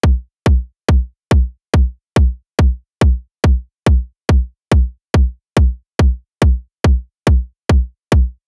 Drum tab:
BD |o-o-o-o-|o-o-o-o-|o-o-o-o-|o-o-o-o-|

BD |o-o-o-o-|